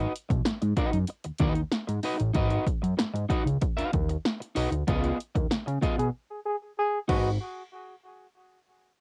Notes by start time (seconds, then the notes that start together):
Already playing: D#4 F#4 B4 D#5
0.16 closed hi-hat
0.29 B1, muted clean electric guitar stroke, kick, closed hi-hat
0.45 G#2, muted clean electric guitar stroke, snare, closed hi-hat
0.62 G#2, muted clean electric guitar stroke, closed hi-hat
0.77 D#4 F#4 B4 D#5, kick, closed hi-hat
0.92 F#2, muted clean electric guitar stroke, closed hi-hat
1.07 muted clean electric guitar stroke, closed hi-hat
1.24 D#2, muted clean electric guitar stroke, closed hi-hat
1.39 D#2 D#4 F#4 B4 D#5, kick, closed hi-hat
1.55 muted clean electric guitar stroke, closed hi-hat
1.72 snare, closed hi-hat
1.87 G#2, muted clean electric guitar stroke, closed hi-hat
2.03 D#4 F#4 B4 D#5, open hi-hat
2.19 A1, muted clean electric guitar stroke, closed hi-hat
2.34 G#1 D#4 F#4 B4 D#5, kick, closed hi-hat
2.51 closed hi-hat
2.67 kick, closed hi-hat
2.82 F#2, muted clean electric guitar stroke, closed hi-hat
2.97 G#2, muted clean electric guitar stroke, snare, closed hi-hat
3.14 G#2, muted clean electric guitar stroke, closed hi-hat
3.29 D#4 F#4 B4 D#5, kick, closed hi-hat
3.45 C#2, muted clean electric guitar stroke, closed hi-hat
3.61 muted clean electric guitar stroke, kick, closed hi-hat
3.77 D#2 D#4 F#4 B4 F5, closed hi-hat
3.93 D#2, muted clean electric guitar stroke, kick, closed hi-hat
4.09 muted clean electric guitar stroke, closed hi-hat
4.25 snare, closed hi-hat
4.40 muted clean electric guitar stroke, closed hi-hat
4.55 B1 D#4 F#4 B4 D#5, open hi-hat
4.72 D2, muted clean electric guitar stroke, closed hi-hat
4.87 C#2 B3 F4 G#4 D#5, kick, closed hi-hat
5.04 snare, closed hi-hat
5.20 closed hi-hat
5.35 D#2, muted clean electric guitar stroke, kick, closed hi-hat
5.51 C#3, muted clean electric guitar stroke, snare, closed hi-hat
5.66 C#3, muted clean electric guitar stroke, closed hi-hat
5.82 B3 F4 G#4 D#5, kick, closed hi-hat
5.98 B2 G#4, muted clean electric guitar stroke, closed hi-hat
6.46 G#4
6.79 G#4
7.08 G#1 D#4 F#4 B4 D#5, kick, crash